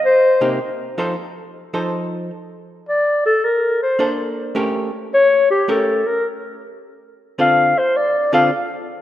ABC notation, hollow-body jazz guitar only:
X:1
M:4/4
L:1/8
Q:"Swing" 1/4=106
K:Bb
V:1 name="Hollow-body jazz guitar"
z [C,B,EG] z [F,EAc] z2 [F,EAc]2 | z6 [B,DAc]2 | [A,^CGB] z3 [A,CGB] z3 | z2 [D,CFA] z2 [D,CFA] z2 |]